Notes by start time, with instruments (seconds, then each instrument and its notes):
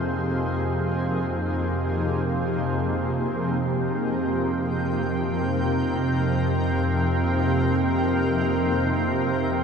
Already playing: synth drone F2 C3, ambient pad F3 A#3 D#4 G#4 C5, singing bowl G#3 G#4
2.75 ambient pad A#4
3.33 ambient pad G5